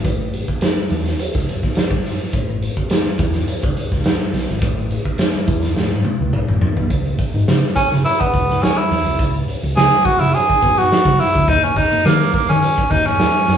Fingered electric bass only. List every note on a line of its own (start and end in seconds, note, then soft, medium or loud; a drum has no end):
0.05 0.41 A1 medium
0.77 muted fingered electric bass stroke soft
0.90 1.14 E2 medium
1.35 1.46 C#2 medium
1.63 1.74 B1 medium
2.33 2.69 A1 medium
3.05 muted fingered electric bass stroke medium
3.19 3.43 E2 medium
3.63 3.74 C#2 medium
3.92 4.03 C#2 medium
4.33 4.46 B1 medium
4.48 4.60 G#1 medium
4.62 4.98 A1 loud
5.34 muted fingered electric bass stroke medium
5.48 5.71 E2 loud
5.76 5.89 A2 loud
5.91 6.02 G#2 medium
6.20 6.33 C#2 medium
6.33 6.46 B1 medium
6.48 6.60 A1 medium
6.77 6.88 B1 medium
6.91 7.14 C#2 medium
7.34 7.45 G#2 medium
7.48 7.60 C#3 loud
7.76 muted fingered electric bass stroke medium
7.91 8.03 C#3 medium
8.34 8.57 C#2 medium
8.91 9.03 E2 loud
9.06 9.17 C2 medium
9.19 9.43 C#2 medium
9.63 9.74 C#2 medium
9.76 9.89 C#3 loud
10.05 muted fingered electric bass stroke medium
10.20 10.31 C#3 loud
10.63 10.86 B2 loud
11.05 11.16 C#3 medium
11.35 11.46 D2 medium
11.48 11.71 D#2 loud
11.92 12.03 A#2 medium
12.05 12.17 D#3 loud
12.34 muted fingered electric bass stroke medium
12.49 12.60 D#3 loud
12.91 13.14 D#2 medium
13.48 13.57 F#2 medium